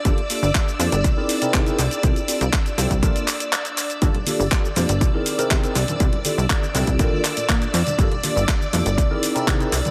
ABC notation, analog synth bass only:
X:1
M:4/4
L:1/16
Q:1/4=121
K:Gdor
V:1 name="Analog synth bass" clef=bass
G,,, z2 G,,, z2 F,, G,,, C,, z2 C, C, z C,, z | C,, z2 C,, z2 C,, C,, B,,, z6 z | G,,, z2 G,,, z2 F,, G,,, C,, z2 C, C, z C,, z | C,, z2 C,, z2 C,, C,, B,,, z2 B,, B,, z F,, z |
G,,, z2 G,,, z2 F,, G,,, C,, z2 C, C, z C,, z |]